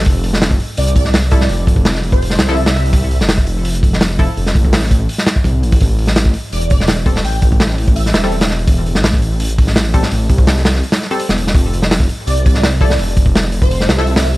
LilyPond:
<<
  \new Staff \with { instrumentName = "Digital synth lead" } { \time 4/4 \key f \lydian \tempo 4 = 167 r2 d''8 d''8 r8 d''8~ | d''8 r4 r16 c''4 e''8 e''8.~ | e''8. r2. r16 | r1 |
r2 d''8 d''8 r4 | g''8 r4. e''4. r8 | r1 | r1 |
r2 d''8 d''8 r8 d''8~ | d''8 r4 r16 c''4 e''8 e''8. | }
  \new Staff \with { instrumentName = "Synth stab" } { \time 4/4 \key f \lydian r2. r8 <f e' a'>16 r16 | r2 r8. <f e' a'>8 r8. | r2. r8 <f e' a'>16 r16 | r1 |
r2. r8 <g c' a'>16 r16 | r2 r8. <g c' a'>8 r8. | r2. r8 <g c' a'>16 r16 | r2 r8. <g c' a'>8 r8. |
r2. r8 <f e' a'>16 r16 | r2 r8. <f e' a'>8 r8. | }
  \new Staff \with { instrumentName = "Detuned saw bass" } { \clef bass \time 4/4 \key f \lydian f,,4. r8 c,2 | f,,4. f,,4 c,4.~ | c,8. f,,2. r16 | f,,8 a,,4. r4 c,8 a,,8 |
a,,4. r8 e,,2 | a,,4. a,,4 e,,4.~ | e,,8. a,,2. r16 | a,,8 c,4. r4 r16 e,,16 e,,8 |
f,,4. r8 c,2 | f,,4. f,,4 c,4. | }
  \new DrumStaff \with { instrumentName = "Drums" } \drummode { \time 4/4 <hho bd>8 hho16 sn16 <hho sn>16 bd16 hho8 hho16 hh16 <hho bd>16 sn16 <hho sn>8 <hho bd>16 sn16 | hho8 <hho bd>16 bd16 <hho sn>16 sn16 hho16 bd16 hho16 sn16 <hho sn>16 sn16 hho16 <hho sn>16 sn16 hho16 | <hho bd>8 hho16 sn16 <hho sn>16 bd16 hho8 hho16 hh16 <hho bd>16 sn16 <hho sn>8 <hho bd>8 | hho16 sn16 <hho bd>16 bd16 <hho sn>16 sn16 <hho bd>8 hho16 sn16 <hho sn>16 bd16 <hho bd>8 hho16 <hho bd>16 |
<hho bd>8 hho16 sn16 <hho sn>16 bd16 hho8 hho16 hh16 <hho bd>16 sn16 <hho sn>8 <hho bd>16 sn16 | hho8 <hho bd>16 bd16 <hho sn>16 sn16 hho16 bd16 hho16 sn16 <hho sn>16 sn16 hho16 <hho sn>16 sn16 hho16 | <hho bd>8 hho16 sn16 <hho sn>16 bd16 hho8 hho16 hh16 <hho bd>16 sn16 <hho sn>8 <hho bd>16 sn16 | hho8 <hho bd>16 bd16 <hho sn>16 sn16 <hho sn>16 sn16 hho16 <hho sn>16 sn16 hho16 hho16 sn16 hho16 sn16 |
<hho bd>8 hho16 sn16 <hho sn>16 bd16 hho8 hho16 hh16 <hho bd>16 sn16 <hho sn>8 <hho bd>16 sn16 | hho8 <hho bd>16 bd16 <hho sn>16 sn16 hho16 bd16 hho16 sn16 <hho sn>16 sn16 hho16 <hho sn>16 sn16 hho16 | }
>>